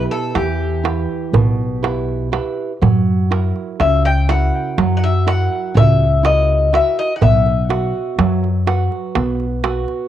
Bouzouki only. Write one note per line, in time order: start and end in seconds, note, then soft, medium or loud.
0.11 0.36 A4 medium
0.36 2.29 G4 medium
3.81 4.03 E5 medium
4.05 4.29 G5 medium
4.29 4.93 F#5 medium
4.97 5.03 F#5 medium
5.04 5.26 E5 medium
5.27 5.77 F#5 medium
5.77 6.25 E5 medium
6.25 6.74 D#5 medium
6.75 6.98 E5 medium
6.99 7.15 D#5 medium
7.16 7.22 F#5 medium
7.23 10.08 E5 medium